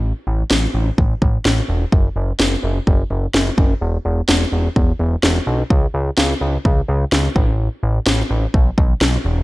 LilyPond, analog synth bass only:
\new Staff \with { instrumentName = "Analog synth bass" } { \clef bass \time 4/4 \key e \major \tempo 4 = 127 a,,8 a,,8 a,,8 a,,8 a,,8 a,,8 a,,8 e,,8 | fis,,8 fis,,8 fis,,8 fis,,8 fis,,8 fis,,8 fis,,8 fis,,8 | e,,8 e,,8 e,,8 e,,8 e,,8 e,,8 e,,8 b,,8 | cis,8 cis,8 cis,8 cis,8 cis,8 cis,8 cis,8 a,,8~ |
a,,8 a,,8 a,,8 a,,8 b,,8 b,,8 b,,8 e,,8 | }